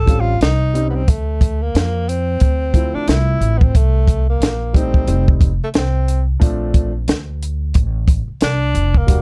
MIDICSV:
0, 0, Header, 1, 6, 480
1, 0, Start_track
1, 0, Key_signature, -1, "minor"
1, 0, Tempo, 666667
1, 778, Time_signature, 4, 2, 24, 8
1, 6636, End_track
2, 0, Start_track
2, 0, Title_t, "Tenor saxophone"
2, 0, Program_c, 0, 66
2, 0, Note_on_c, 0, 69, 103
2, 146, Note_on_c, 0, 65, 109
2, 156, Note_off_c, 0, 69, 0
2, 300, Note_off_c, 0, 65, 0
2, 304, Note_on_c, 0, 63, 99
2, 623, Note_off_c, 0, 63, 0
2, 649, Note_on_c, 0, 59, 63
2, 683, Note_on_c, 0, 60, 92
2, 694, Note_off_c, 0, 59, 0
2, 783, Note_on_c, 0, 57, 84
2, 794, Note_off_c, 0, 60, 0
2, 1166, Note_on_c, 0, 58, 95
2, 1177, Note_off_c, 0, 57, 0
2, 1505, Note_on_c, 0, 60, 100
2, 1516, Note_off_c, 0, 58, 0
2, 2121, Note_on_c, 0, 62, 90
2, 2132, Note_off_c, 0, 60, 0
2, 2223, Note_on_c, 0, 64, 98
2, 2234, Note_off_c, 0, 62, 0
2, 2578, Note_on_c, 0, 59, 61
2, 2589, Note_off_c, 0, 64, 0
2, 2609, Note_on_c, 0, 60, 88
2, 2620, Note_off_c, 0, 59, 0
2, 2711, Note_on_c, 0, 57, 93
2, 2722, Note_off_c, 0, 60, 0
2, 3085, Note_off_c, 0, 57, 0
2, 3092, Note_on_c, 0, 58, 89
2, 3436, Note_on_c, 0, 60, 89
2, 3446, Note_off_c, 0, 58, 0
2, 3845, Note_off_c, 0, 60, 0
2, 4058, Note_on_c, 0, 57, 78
2, 4098, Note_off_c, 0, 57, 0
2, 4159, Note_on_c, 0, 60, 75
2, 4503, Note_off_c, 0, 60, 0
2, 6074, Note_on_c, 0, 62, 106
2, 6463, Note_on_c, 0, 58, 99
2, 6474, Note_off_c, 0, 62, 0
2, 6636, Note_off_c, 0, 58, 0
2, 6636, End_track
3, 0, Start_track
3, 0, Title_t, "Upright piano"
3, 0, Program_c, 1, 0
3, 43, Note_on_c, 1, 55, 78
3, 52, Note_on_c, 1, 60, 66
3, 60, Note_on_c, 1, 61, 60
3, 67, Note_on_c, 1, 65, 74
3, 231, Note_off_c, 1, 55, 0
3, 235, Note_off_c, 1, 60, 0
3, 239, Note_off_c, 1, 61, 0
3, 243, Note_off_c, 1, 65, 0
3, 529, Note_on_c, 1, 55, 67
3, 538, Note_on_c, 1, 60, 65
3, 544, Note_on_c, 1, 61, 59
3, 551, Note_on_c, 1, 63, 75
3, 714, Note_off_c, 1, 55, 0
3, 718, Note_off_c, 1, 60, 0
3, 721, Note_off_c, 1, 61, 0
3, 725, Note_off_c, 1, 63, 0
3, 1966, Note_on_c, 1, 53, 63
3, 1973, Note_on_c, 1, 57, 56
3, 1979, Note_on_c, 1, 60, 58
3, 1988, Note_on_c, 1, 64, 77
3, 2652, Note_off_c, 1, 53, 0
3, 2656, Note_off_c, 1, 57, 0
3, 2659, Note_off_c, 1, 60, 0
3, 2663, Note_off_c, 1, 64, 0
3, 3408, Note_on_c, 1, 55, 68
3, 3416, Note_on_c, 1, 57, 70
3, 3423, Note_on_c, 1, 60, 64
3, 3430, Note_on_c, 1, 63, 78
3, 3632, Note_off_c, 1, 55, 0
3, 3642, Note_off_c, 1, 57, 0
3, 3643, Note_on_c, 1, 55, 64
3, 3649, Note_off_c, 1, 60, 0
3, 3653, Note_on_c, 1, 57, 58
3, 3654, Note_off_c, 1, 63, 0
3, 3660, Note_on_c, 1, 60, 67
3, 3664, Note_on_c, 1, 63, 68
3, 3947, Note_off_c, 1, 55, 0
3, 3952, Note_off_c, 1, 57, 0
3, 3955, Note_off_c, 1, 60, 0
3, 3958, Note_off_c, 1, 63, 0
3, 4605, Note_on_c, 1, 53, 96
3, 4611, Note_on_c, 1, 57, 76
3, 4619, Note_on_c, 1, 60, 73
3, 4627, Note_on_c, 1, 62, 93
3, 4964, Note_off_c, 1, 53, 0
3, 4967, Note_off_c, 1, 57, 0
3, 4971, Note_off_c, 1, 60, 0
3, 4975, Note_off_c, 1, 62, 0
3, 6528, Note_on_c, 1, 55, 73
3, 6536, Note_on_c, 1, 58, 62
3, 6544, Note_on_c, 1, 62, 63
3, 6553, Note_on_c, 1, 66, 78
3, 6636, Note_off_c, 1, 55, 0
3, 6636, Note_off_c, 1, 58, 0
3, 6636, Note_off_c, 1, 62, 0
3, 6636, Note_off_c, 1, 66, 0
3, 6636, End_track
4, 0, Start_track
4, 0, Title_t, "Upright bass"
4, 0, Program_c, 2, 32
4, 0, Note_on_c, 2, 33, 114
4, 275, Note_off_c, 2, 33, 0
4, 294, Note_on_c, 2, 36, 89
4, 752, Note_off_c, 2, 36, 0
4, 777, Note_on_c, 2, 38, 86
4, 1233, Note_off_c, 2, 38, 0
4, 1257, Note_on_c, 2, 41, 93
4, 1713, Note_off_c, 2, 41, 0
4, 1739, Note_on_c, 2, 38, 92
4, 2100, Note_off_c, 2, 38, 0
4, 2215, Note_on_c, 2, 36, 91
4, 2444, Note_off_c, 2, 36, 0
4, 2452, Note_on_c, 2, 33, 99
4, 2683, Note_off_c, 2, 33, 0
4, 2697, Note_on_c, 2, 36, 89
4, 3153, Note_off_c, 2, 36, 0
4, 3171, Note_on_c, 2, 34, 95
4, 3630, Note_off_c, 2, 34, 0
4, 3656, Note_on_c, 2, 29, 97
4, 4018, Note_off_c, 2, 29, 0
4, 4136, Note_on_c, 2, 36, 79
4, 4593, Note_off_c, 2, 36, 0
4, 4618, Note_on_c, 2, 34, 87
4, 5074, Note_off_c, 2, 34, 0
4, 5096, Note_on_c, 2, 38, 86
4, 5553, Note_off_c, 2, 38, 0
4, 5581, Note_on_c, 2, 33, 95
4, 5941, Note_off_c, 2, 33, 0
4, 6057, Note_on_c, 2, 36, 79
4, 6286, Note_off_c, 2, 36, 0
4, 6298, Note_on_c, 2, 29, 92
4, 6526, Note_off_c, 2, 29, 0
4, 6541, Note_on_c, 2, 28, 87
4, 6636, Note_off_c, 2, 28, 0
4, 6636, End_track
5, 0, Start_track
5, 0, Title_t, "Muted upright bass strokes"
5, 2117, Note_on_c, 9, 29, 43
5, 2189, Note_off_c, 9, 29, 0
5, 4040, Note_on_c, 9, 29, 45
5, 4112, Note_off_c, 9, 29, 0
5, 5959, Note_on_c, 9, 29, 42
5, 6031, Note_off_c, 9, 29, 0
5, 6636, End_track
6, 0, Start_track
6, 0, Title_t, "Drums"
6, 54, Note_on_c, 9, 36, 112
6, 61, Note_on_c, 9, 42, 80
6, 126, Note_off_c, 9, 36, 0
6, 133, Note_off_c, 9, 42, 0
6, 296, Note_on_c, 9, 42, 81
6, 307, Note_on_c, 9, 38, 112
6, 368, Note_off_c, 9, 42, 0
6, 379, Note_off_c, 9, 38, 0
6, 542, Note_on_c, 9, 42, 68
6, 614, Note_off_c, 9, 42, 0
6, 777, Note_on_c, 9, 42, 86
6, 778, Note_on_c, 9, 36, 111
6, 849, Note_off_c, 9, 42, 0
6, 850, Note_off_c, 9, 36, 0
6, 1015, Note_on_c, 9, 36, 95
6, 1019, Note_on_c, 9, 42, 75
6, 1087, Note_off_c, 9, 36, 0
6, 1091, Note_off_c, 9, 42, 0
6, 1260, Note_on_c, 9, 42, 78
6, 1270, Note_on_c, 9, 38, 109
6, 1332, Note_off_c, 9, 42, 0
6, 1342, Note_off_c, 9, 38, 0
6, 1506, Note_on_c, 9, 42, 70
6, 1578, Note_off_c, 9, 42, 0
6, 1729, Note_on_c, 9, 42, 71
6, 1739, Note_on_c, 9, 36, 103
6, 1801, Note_off_c, 9, 42, 0
6, 1811, Note_off_c, 9, 36, 0
6, 1972, Note_on_c, 9, 36, 97
6, 1977, Note_on_c, 9, 42, 73
6, 2044, Note_off_c, 9, 36, 0
6, 2049, Note_off_c, 9, 42, 0
6, 2215, Note_on_c, 9, 42, 76
6, 2226, Note_on_c, 9, 38, 106
6, 2287, Note_off_c, 9, 42, 0
6, 2298, Note_off_c, 9, 38, 0
6, 2459, Note_on_c, 9, 42, 69
6, 2531, Note_off_c, 9, 42, 0
6, 2600, Note_on_c, 9, 36, 102
6, 2672, Note_off_c, 9, 36, 0
6, 2698, Note_on_c, 9, 36, 106
6, 2700, Note_on_c, 9, 42, 90
6, 2770, Note_off_c, 9, 36, 0
6, 2772, Note_off_c, 9, 42, 0
6, 2934, Note_on_c, 9, 36, 92
6, 2939, Note_on_c, 9, 42, 72
6, 3006, Note_off_c, 9, 36, 0
6, 3011, Note_off_c, 9, 42, 0
6, 3181, Note_on_c, 9, 42, 82
6, 3191, Note_on_c, 9, 38, 104
6, 3253, Note_off_c, 9, 42, 0
6, 3263, Note_off_c, 9, 38, 0
6, 3416, Note_on_c, 9, 36, 89
6, 3429, Note_on_c, 9, 42, 74
6, 3488, Note_off_c, 9, 36, 0
6, 3501, Note_off_c, 9, 42, 0
6, 3558, Note_on_c, 9, 36, 92
6, 3630, Note_off_c, 9, 36, 0
6, 3654, Note_on_c, 9, 42, 77
6, 3726, Note_off_c, 9, 42, 0
6, 3803, Note_on_c, 9, 36, 98
6, 3875, Note_off_c, 9, 36, 0
6, 3893, Note_on_c, 9, 36, 111
6, 3898, Note_on_c, 9, 42, 72
6, 3965, Note_off_c, 9, 36, 0
6, 3970, Note_off_c, 9, 42, 0
6, 4131, Note_on_c, 9, 42, 74
6, 4143, Note_on_c, 9, 38, 115
6, 4203, Note_off_c, 9, 42, 0
6, 4215, Note_off_c, 9, 38, 0
6, 4380, Note_on_c, 9, 42, 61
6, 4452, Note_off_c, 9, 42, 0
6, 4619, Note_on_c, 9, 36, 122
6, 4622, Note_on_c, 9, 42, 94
6, 4691, Note_off_c, 9, 36, 0
6, 4694, Note_off_c, 9, 42, 0
6, 4855, Note_on_c, 9, 36, 86
6, 4855, Note_on_c, 9, 42, 74
6, 4927, Note_off_c, 9, 36, 0
6, 4927, Note_off_c, 9, 42, 0
6, 5097, Note_on_c, 9, 42, 89
6, 5107, Note_on_c, 9, 38, 95
6, 5169, Note_off_c, 9, 42, 0
6, 5179, Note_off_c, 9, 38, 0
6, 5347, Note_on_c, 9, 42, 70
6, 5419, Note_off_c, 9, 42, 0
6, 5575, Note_on_c, 9, 42, 74
6, 5582, Note_on_c, 9, 36, 100
6, 5647, Note_off_c, 9, 42, 0
6, 5654, Note_off_c, 9, 36, 0
6, 5815, Note_on_c, 9, 36, 100
6, 5820, Note_on_c, 9, 42, 77
6, 5887, Note_off_c, 9, 36, 0
6, 5892, Note_off_c, 9, 42, 0
6, 6053, Note_on_c, 9, 42, 78
6, 6064, Note_on_c, 9, 38, 105
6, 6125, Note_off_c, 9, 42, 0
6, 6136, Note_off_c, 9, 38, 0
6, 6299, Note_on_c, 9, 42, 66
6, 6371, Note_off_c, 9, 42, 0
6, 6440, Note_on_c, 9, 36, 100
6, 6512, Note_off_c, 9, 36, 0
6, 6539, Note_on_c, 9, 42, 90
6, 6540, Note_on_c, 9, 36, 110
6, 6611, Note_off_c, 9, 42, 0
6, 6612, Note_off_c, 9, 36, 0
6, 6636, End_track
0, 0, End_of_file